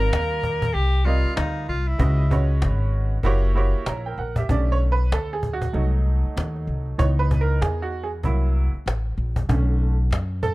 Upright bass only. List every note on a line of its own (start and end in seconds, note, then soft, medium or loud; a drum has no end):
0.13 0.72 D#2 medium
0.75 1.22 C2 medium
1.25 muted upright bass stroke soft
1.37 1.70 D2 loud
1.68 1.98 C2 medium
1.99 2.64 C#2 loud
2.62 3.21 G#1 medium
3.23 3.71 F#1 medium
3.75 muted upright bass stroke soft
3.87 4.16 A#1 medium
4.18 4.48 A#1 medium
4.49 5.09 B1 loud
5.12 5.71 D2 medium
5.74 6.22 C2 medium
6.25 muted upright bass stroke soft
6.37 6.66 D#2 medium
6.67 6.97 C2 medium
6.99 7.59 C#2 loud
7.61 8.21 E2 medium
8.23 8.71 C2 medium
8.74 muted upright bass stroke soft
8.86 9.16 A1 medium
9.18 9.48 A#1 medium
9.49 10.09 B1 loud
10.11 10.54 F#2 loud